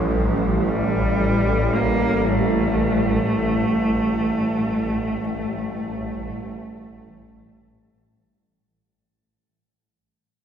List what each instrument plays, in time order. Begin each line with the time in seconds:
Already playing: synth drone A1, cello F3, analog synth pad G3 E4 A4
0.69 cello G3
1.75 cello A#3
2.28 cello A3